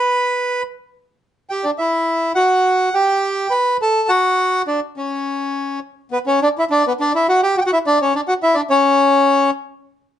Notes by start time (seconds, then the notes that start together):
Already playing: B4 B5
1.50 G4 G5
1.64 D4 D5
1.78 E4 E5
2.35 F#4 F#5
2.94 G4 G5
3.50 B4 B5
3.82 A4 A5
4.09 F#4 F#5
4.67 D4 D5
4.97 C#4 C#5
6.11 B3 B4
6.26 C#4 C#5
6.42 D4 D5
6.58 E4 E5
6.70 D4 D5
6.87 B3 B4
7.00 D4 D5
7.15 E4 E5
7.29 F#4 F#5
7.43 G4 G5
7.57 F#4 F#5 G5
7.66 F#4 F#5
7.73 E4 E5
7.86 D4 D5
8.02 C#4 C#5
8.15 D4 D5
8.28 F#4 F#5
8.43 E4 E5
8.54 D4 D5
8.70 C#4 C#5